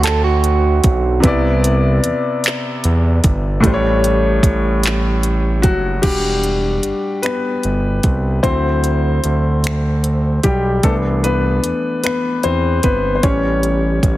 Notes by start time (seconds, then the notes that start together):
Already playing: D2 D3 C4 F#4 E5
0.03 A4, clap, closed hi-hat
0.24 F#4
0.44 closed hi-hat
0.84 B1, kick, closed hi-hat
1.20 C3 B3, kick, closed hi-hat
1.24 C2 E4 D5
1.64 closed hi-hat
2.04 E2, closed hi-hat
2.44 clap, closed hi-hat
2.84 E2, closed hi-hat
3.24 G1, kick, closed hi-hat
3.60 A1 A2 A3, kick, closed hi-hat
3.65 G3 C5
3.74 C#5
4.04 closed hi-hat
4.43 A1, kick, closed hi-hat
4.83 clap, closed hi-hat
5.23 closed hi-hat
5.62 F#1 F#3 F#4, kick, closed hi-hat
6.02 E1 G3 D4 F#4 G4, kick, closed hi-hat, crash
6.44 closed hi-hat
6.83 G1, closed hi-hat
7.22 B3 B4, finger snap, closed hi-hat
7.63 G1, closed hi-hat
8.03 C2, kick, closed hi-hat
8.43 D2 F#3 C4 E4 C5, kick, closed hi-hat
8.84 closed hi-hat
9.24 D2, closed hi-hat
9.64 finger snap, closed hi-hat
10.04 closed hi-hat
10.43 B1 G3 G4, kick, closed hi-hat
10.83 C2 E3 A3 B3 D4 A4, kick, closed hi-hat
11.24 B3 B4, closed hi-hat
11.64 E2, closed hi-hat
12.04 B3 B4, finger snap, closed hi-hat
12.43 E2 C4 C5, closed hi-hat
12.83 G1 B3 B4, kick, closed hi-hat
13.15 C5
13.23 A1 G3 B3 C#4 C#5, kick, closed hi-hat
13.63 closed hi-hat
14.03 A1, kick, closed hi-hat